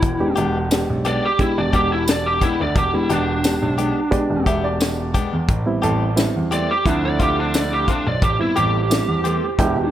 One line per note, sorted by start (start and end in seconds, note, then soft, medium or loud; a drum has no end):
0.00 0.17 E1 medium
0.00 0.35 E4 loud
0.00 kick loud
0.00 closed hi-hat medium
0.20 0.30 E1 soft
0.20 0.63 G#3 medium
0.20 0.64 B3 medium
0.20 0.64 D4 medium
0.20 0.63 G4 medium
0.36 0.79 E1 medium
0.36 0.59 G#3 medium
0.36 0.58 B3 medium
0.36 0.58 D4 medium
0.36 0.57 G4 medium
0.36 closed hi-hat medium
0.71 1.29 G#3 medium
0.71 1.29 B3 medium
0.71 1.29 D4 medium
0.71 1.29 G4 medium
0.71 snare loud
0.71 closed hi-hat medium
0.71 tambourine loud
0.90 1.16 B1 medium
1.05 1.27 G#3 soft
1.05 1.27 B3 soft
1.05 1.26 D4 medium
1.05 1.26 G4 medium
1.05 1.24 D5 medium
1.05 closed hi-hat medium
1.25 1.40 G4 medium
1.39 2.55 G#3 medium
1.39 2.55 B3 medium
1.39 2.55 D4 medium
1.39 1.57 E4 medium
1.39 2.55 G4 medium
1.39 kick medium
1.39 closed hi-hat medium
1.58 2.38 E1 medium
1.58 1.74 D5 medium
1.73 1.95 G#3 soft
1.73 1.95 B3 medium
1.73 1.95 D4 medium
1.73 1.94 G4 medium
1.73 1.91 G4 medium
1.73 kick medium
1.73 closed hi-hat medium
1.93 2.08 E4 medium
2.08 2.26 D5 medium
2.08 snare loud
2.08 closed hi-hat medium
2.08 tambourine loud
2.26 2.42 G4 medium
2.41 2.64 G#3 medium
2.41 2.63 B3 medium
2.41 2.63 D4 medium
2.41 2.60 E4 medium
2.41 2.63 G4 medium
2.41 kick medium
2.41 closed hi-hat medium
2.60 2.73 D2 medium
2.60 2.77 D5 medium
2.75 2.89 E1 medium
2.75 2.95 G4 medium
2.75 kick loud
2.75 closed hi-hat medium
2.93 3.02 E1 soft
2.93 3.37 G#3 medium
2.93 3.37 B3 medium
2.93 3.36 D4 medium
2.93 3.10 E4 medium
2.93 3.37 G4 medium
3.10 3.51 E1 medium
3.10 3.32 G#3 medium
3.10 3.32 B3 medium
3.10 3.31 D4 medium
3.10 4.43 D4 medium
3.10 3.31 G4 medium
3.10 closed hi-hat medium
3.44 4.02 G#3 medium
3.44 4.02 B3 medium
3.44 4.02 D4 medium
3.44 4.02 G4 medium
3.44 snare loud
3.44 closed hi-hat medium
3.44 tambourine loud
3.62 3.89 B1 medium
3.78 4.00 G#3 soft
3.78 4.00 B3 medium
3.78 4.00 D4 medium
3.78 3.99 G4 medium
3.78 closed hi-hat medium
4.11 5.27 G#3 medium
4.11 5.27 B3 medium
4.11 5.27 D4 medium
4.11 5.27 G4 loud
4.11 4.46 D5 medium
4.11 kick medium
4.11 closed hi-hat medium
4.30 5.11 E1 medium
4.46 4.69 G#3 medium
4.46 4.68 B3 medium
4.46 4.68 D4 medium
4.46 4.68 G4 medium
4.46 4.63 E5 medium
4.46 kick medium
4.46 closed hi-hat medium
4.64 5.80 D5 medium
4.80 snare loud
4.80 closed hi-hat medium
4.80 tambourine loud
5.14 5.37 G#3 medium
5.14 5.36 B3 medium
5.14 5.36 D4 medium
5.14 5.36 G4 medium
5.14 kick medium
5.14 closed hi-hat medium
5.33 5.46 E2 medium
5.49 5.63 A1 medium
5.49 kick loud
5.49 closed hi-hat medium
5.66 5.75 A1 soft
5.66 6.09 G3 medium
5.66 6.09 B3 medium
5.66 6.09 C4 medium
5.66 6.10 E4 loud
5.82 6.24 A1 medium
5.82 6.05 E3 medium
5.82 6.04 A3 medium
5.82 6.04 C4 medium
5.82 6.04 G4 medium
5.82 6.33 A4 medium
5.82 closed hi-hat medium
6.16 6.75 G3 medium
6.16 6.75 B3 medium
6.16 6.75 C4 medium
6.16 6.75 E4 medium
6.16 snare loud
6.16 closed hi-hat medium
6.16 tambourine loud
6.36 6.62 E2 medium
6.51 6.73 E3 medium
6.51 6.73 A3 medium
6.51 6.73 C4 medium
6.51 6.72 G4 medium
6.51 6.70 D5 medium
6.51 closed hi-hat medium
6.71 6.86 G4 medium
6.85 7.00 D2 loud
6.85 8.01 F3 medium
6.85 8.01 A3 medium
6.85 8.01 C4 medium
6.85 7.04 D4 medium
6.85 8.01 E4 medium
6.85 kick medium
6.85 closed hi-hat medium
7.03 7.84 D2 medium
7.03 7.20 D5 medium
7.19 7.42 F3 medium
7.19 7.41 A3 medium
7.19 7.41 C4 medium
7.19 7.41 F4 medium
7.19 7.38 G4 medium
7.19 kick medium
7.19 closed hi-hat medium
7.39 7.55 D4 medium
7.54 7.72 D5 medium
7.54 snare loud
7.54 closed hi-hat medium
7.54 tambourine loud
7.73 7.88 G4 medium
7.88 8.10 F3 medium
7.88 8.10 A3 medium
7.88 8.10 C4 medium
7.88 8.06 D4 medium
7.88 8.09 F4 medium
7.88 kick medium
7.88 closed hi-hat medium
8.07 8.19 B1 medium
8.07 8.22 D5 medium
8.22 8.36 A1 medium
8.22 8.40 G4 medium
8.22 kick loud
8.22 closed hi-hat medium
8.40 8.49 A1 soft
8.40 8.83 G3 medium
8.40 8.83 B3 medium
8.40 8.83 C4 medium
8.40 8.83 E4 medium
8.40 8.57 E4 medium
8.56 8.97 A1 medium
8.56 8.78 E3 medium
8.56 8.78 A3 medium
8.56 8.77 C4 medium
8.56 8.77 G4 medium
8.56 9.89 G4 medium
8.56 closed hi-hat medium
8.90 9.48 G3 medium
8.90 9.48 B3 medium
8.90 9.48 C4 medium
8.90 9.48 E4 medium
8.90 snare loud
8.90 closed hi-hat medium
8.90 tambourine loud
9.08 9.35 E2 medium
9.24 9.46 E3 medium
9.24 9.46 A3 medium
9.24 9.46 C4 medium
9.24 9.45 G4 medium
9.24 closed hi-hat medium
9.59 9.73 E1 loud
9.59 9.91 G#3 medium
9.59 9.91 B3 medium
9.59 9.91 D4 medium
9.59 9.75 E4 medium
9.59 9.91 G5 loud
9.59 kick medium
9.59 closed hi-hat medium
9.76 9.90 E1 medium
9.76 9.91 G4 medium